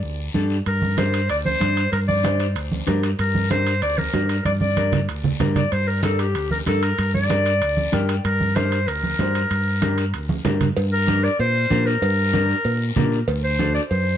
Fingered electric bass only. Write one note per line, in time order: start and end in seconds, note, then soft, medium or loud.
0.03 0.28 D2 medium
0.35 0.60 G2 medium
0.66 1.29 G2 medium
1.29 1.55 D2 medium
1.61 1.86 G2 medium
1.92 2.56 G2 medium
2.56 2.81 D2 medium
2.88 3.13 G2 medium
3.19 3.82 G2 medium
3.82 4.07 D2 medium
4.14 4.39 G2 medium
4.45 5.08 G2 medium
5.08 5.34 D2 medium
5.40 5.65 G2 medium
5.72 6.35 G2 medium
6.35 6.60 D2 medium
6.67 6.92 G2 medium
6.98 7.62 G2 medium
7.62 7.87 D2 medium
7.93 8.18 G2 medium
8.25 8.88 G2 medium
8.88 9.13 D2 medium
9.19 9.44 G2 medium
9.51 10.14 G2 medium
10.14 10.39 D2 medium
10.45 10.70 G2 medium
10.77 11.27 G2 medium
11.39 11.64 A#2 medium
11.71 11.96 A#2 medium
12.02 12.52 G2 medium
12.65 12.90 A#2 medium
12.96 13.22 A#2 medium
13.28 13.78 D2 loud
13.91 14.16 F#2 medium